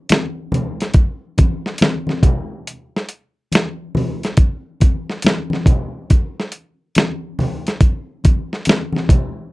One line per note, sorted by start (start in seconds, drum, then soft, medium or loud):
0.09 snare loud
0.09 closed hi-hat medium
0.09 muted conga soft
0.09 high conga medium
0.52 closed hi-hat medium
0.52 muted conga soft
0.52 high conga medium
0.52 low conga medium
0.80 snare soft
0.80 closed hi-hat soft
0.94 kick loud
0.94 closed hi-hat medium
0.94 muted conga soft
1.38 kick medium
1.38 closed hi-hat medium
1.38 muted conga soft
1.38 high conga soft
1.66 snare soft
1.78 closed hi-hat medium
1.78 muted conga soft
1.78 high conga medium
1.82 snare loud
2.07 snare soft
2.07 high conga medium
2.23 kick medium
2.23 closed hi-hat medium
2.23 muted conga soft
2.23 low conga medium
2.67 closed hi-hat medium
2.96 snare soft
3.09 closed hi-hat medium
3.52 snare loud
3.52 closed hi-hat medium
3.52 high conga medium
3.95 open hi-hat soft
3.95 muted conga soft
3.95 high conga medium
3.95 low conga medium
4.23 snare soft
4.23 closed hi-hat soft
4.37 kick loud
4.37 closed hi-hat medium
4.37 muted conga soft
4.80 kick loud
4.80 closed hi-hat medium
4.80 high conga medium
5.10 snare soft
5.22 closed hi-hat medium
5.22 muted conga soft
5.22 high conga medium
5.26 snare loud
5.50 snare soft
5.50 high conga medium
5.66 kick loud
5.66 closed hi-hat medium
5.66 muted conga soft
5.66 low conga medium
6.10 kick medium
6.10 closed hi-hat medium
6.10 muted conga soft
6.40 snare soft
6.52 closed hi-hat medium
6.95 snare loud
6.95 closed hi-hat medium
6.95 muted conga soft
6.95 high conga medium
7.39 open hi-hat soft
7.39 high conga medium
7.39 low conga medium
7.67 snare soft
7.67 closed hi-hat soft
7.81 kick loud
7.81 closed hi-hat medium
7.81 muted conga soft
8.24 kick loud
8.24 closed hi-hat medium
8.24 high conga soft
8.53 snare soft
8.65 closed hi-hat medium
8.65 muted conga soft
8.65 high conga medium
8.69 snare loud
8.93 snare soft
8.93 high conga medium
9.09 kick loud
9.09 closed hi-hat medium
9.09 muted conga soft
9.09 low conga medium